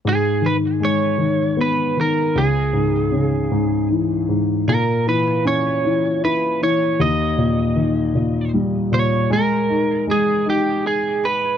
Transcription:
<<
  \new Staff \with { instrumentName = "Lead electric guitar" } { \time 6/8 \key gis \minor \tempo 4. = 52 gis'8 b'8 cis''4 b'8 ais'8 | gis'2 r4 | ais'8 b'8 cis''4 b'8 cis''8 | dis''2 r8 cis''8 |
ais'4 gis'8 g'8 gis'8 b'8 | }
  \new Staff \with { instrumentName = "Grand piano" } { \clef bass \time 6/8 \key gis \minor gis,8 dis8 gis8 dis8 b8 dis8 | cis,8 gis,8 cis8 gis,8 e8 gis,8 | ais,8 e8 cis'8 e8 e'8 e8 | dis,8 ais,8 dis8 ais,8 g8 ais,8 |
gis8 dis'8 gis8 dis'4. | }
>>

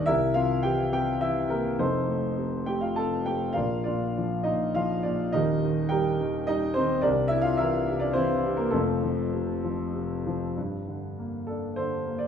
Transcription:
<<
  \new Staff \with { instrumentName = "Grand piano" } { \time 3/4 \key f \mixolydian \tempo 4 = 103 << { e''8 f''8 g''8 g''8 e''8 bes'8 | c''4. g''16 f''16 a''8 g''8 | f''8 d''4 ees''8 f''8 d''8 | ees''4 g''4 ees''8 c''8 |
d''8 e''16 f''16 e''8. d''16 c''8. bes'16 | a'2 r4 | \key g \minor r4. a'8 c''8. d''16 | } \\ { <e' g' bes'>8 f'8 g'8 g'8 e'8 bes8 | <c' ees' a'>4. g'16 f'16 a'8 g'8 | <f' bes' d''>8 <d' f'>4 ees'8 f'8 d'8 | <ees' g' bes'>4 <g' bes'>4 ees'8 c'8 |
<d' g' bes'>8 e'16 f'16 <e' bes'>8. d'16 <c' e'>8. bes16 | <a c' f'>2 r4 | r2 a'4 | } >> }
  \new Staff \with { instrumentName = "Grand piano" } { \clef bass \time 3/4 \key f \mixolydian c,8 c8 e8 c8 e8 c8 | <f,, f,>8 a8 c8 a8 c8 a8 | <bes,, bes,>8 bes,8 f8 bes,8 f8 bes,8 | <ees,, ees,>8 ees8 g8 ees8 g8 ees8 |
c,8 c8 e8 c8 e8 c8 | <f,, f,>8 f8 c8 f8 c8 f8 | \key g \minor g,8 d8 bes8 d'8 d8 bes8 | }
>>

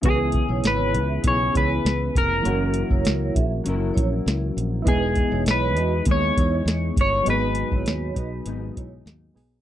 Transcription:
<<
  \new Staff \with { instrumentName = "Clean electric guitar" } { \time 4/4 \key cis \dorian \tempo 4 = 100 gis'4 b'4 cis''8 b'4 ais'8~ | ais'4. r2 r8 | gis'4 b'4 cis''4. cis''8 | b'2. r4 | }
  \new Staff \with { instrumentName = "Vibraphone" } { \time 4/4 \key cis \dorian <e' b'>16 r8 <e' cis''>16 <e' cis''>8 <gis' e''>16 r8. <e' cis''>16 r4 r16 | <cis' ais'>16 r8 <e' cis''>16 <e' cis''>8 <gis' e''>16 r8. <e' cis''>16 r4 r16 | <dis' b'>16 r8 <e' cis''>16 <e' cis''>8 <fis' dis''>16 r8. <e' cis''>16 r4 r16 | <dis' b'>16 r8 <e' cis''>16 <fis' cis''>8 <fis' dis''>16 r8. <e' cis''>16 r4 r16 | }
  \new Staff \with { instrumentName = "Synth keys" } { \time 4/4 \key cis \dorian <e b cis' gis'>2~ <e b cis' gis'>8 <e b cis' gis'>4. | <e ais cis' fis'>1 | <b dis' e' gis'>1 | <fis b dis' gis'>2.~ <fis b dis' gis'>8 <fis b dis' gis'>8 | }
  \new Staff \with { instrumentName = "Clean electric guitar" } { \time 4/4 \key cis \dorian <cis b e' gis'>2 <cis b e' gis'>2 | <fis cis' e' ais'>2 <fis cis' e' ais'>2 | <e gis b dis'>4. <gis b dis'>8 <gis b dis'>2 | <gis, fis b dis'>4. <fis b dis'>8 <gis, fis b dis'>4. <fis b dis'>8 | }
  \new Staff \with { instrumentName = "Fingered electric bass" } { \clef bass \time 4/4 \key cis \dorian cis,8. b,,16 gis,,8 cis,8 b,,8 cis,8 cis,8 f,,8 | fis,,8. fis,,16 cis,8 ais,,8 fis,,8 ais,,8 cis,8 ais,,8 | e,,8. e,,16 b,,8 e,8 dis,8 e,8 e,8 g,,8 | gis,,8. gis,,16 dis,8 b,,8 gis,,8 b,,8 dis,8 b,,8 | }
  \new DrumStaff \with { instrumentName = "Drums" } \drummode { \time 4/4 <hh bd>8 <hh bd>8 <hh sn>8 hh8 <hh bd>8 <hh bd>8 <hh sn>8 <hh bd>8 | hh8 hh16 bd16 <hh sn>8 <hh bd>8 hh8 <hh bd>8 <hh sn>8 hh8 | <hh bd>8 <hh bd>8 <hh sn>8 hh8 <hh bd>8 <hh bd>8 <hh sn>8 <hh bd>8 | hh8 hh16 bd16 <hh sn>8 <hh bd>8 hh8 <hh bd>8 <hh sn>8 <hho sn>8 | }
>>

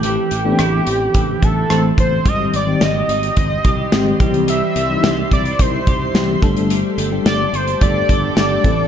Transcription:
<<
  \new Staff \with { instrumentName = "Ambient pad" } { \time 4/4 \key g \mixolydian \tempo 4 = 108 << { r1 | <ees'' g'' c'''>2.~ <ees'' g'' c'''>8 <c'' e'' c'''>8~ | <c'' e'' c'''>2.~ <c'' e'' c'''>8 <d'' g'' d'''>8~ | <d'' g'' d'''>2.~ <d'' g'' d'''>8 <c'' e'' c'''>8 | } \\ { r1 | g1~ | g2.~ g8 a'8~ | a'1 | } >> }
  \new Staff \with { instrumentName = "Analog synth lead" } { \time 4/4 \key g \mixolydian g'2~ g'8 a'8 a'8 c''8 | ees''8 d''8 ees''8 ees''2 r8 | e''4. d''8 c''4. r8 | r4 d''8 c''8 d''4 d''4 | }
  \new Staff \with { instrumentName = "Clean electric guitar" } { \time 4/4 \key g \mixolydian e8 e8 e'8 c'8 e8 e'8 e8 c'8 | g8 c'8 g'8 ees'8 c'8 g'8 c'8 g8 | g8 c'8 g'8 e'8 c'8 g'8 c'8 g8 | g8 a8 a'8 d'8 a8 a'8 a8 e8 | }
  \new Staff \with { instrumentName = "FM electric piano" } { \time 4/4 \key g \mixolydian <e a c' a'>8. <e a b c' d'>2 r16 <e a c' c''>4 | <ees g c' g'>8. <ees g c' g'>2 r16 <ees aes c' g'>8 <e g c' g'>8~ | <e g c' g'>8. <e g c' ees' e'>2 r16 <e g c' g'>8 <g a d' a'>8~ | <g a d' a'>8. <g a d' g'>2 r16 <g a d' g'>8 <e a c' a'>8 | }
  \new Staff \with { instrumentName = "Fretless electric bass" } { \clef bass \time 4/4 \key g \mixolydian a,,8 a,,8 a,,8 a,,8 a,,8 a,,8 a,,8 a,,8 | aes,,8 aes,,8 aes,,8 aes,,8 aes,,8 c,8 aes,,8 c,8~ | c,8 c,8 c,8 c,8 c,8 c,8 c,8 g,,8~ | g,,8 g,,8 g,,8 g,,8 g,,8 g,,8 g,,8 a,,8 | }
  \new DrumStaff \with { instrumentName = "Drums" } \drummode { \time 4/4 hh8 hh8 <hh ss>8 hh8 <hh bd>8 <hh bd>8 <hh ss>8 <hh bd>8 | <hh bd>8 hh8 <hh sn>8 hh16 hh16 <hh bd>8 <hh bd>8 <hh sn>8 <hh bd>16 hh16 | hh8 hh8 <hh sn>8 <hh bd>16 hh16 <hh bd>8 <hh bd>8 <hh sn>8 <hh bd>16 hh16 | hh8 hh8 <hh sn>8 hh16 hh16 <hh bd>8 <hh bd>8 <hh sn>8 <hh bd>8 | }
>>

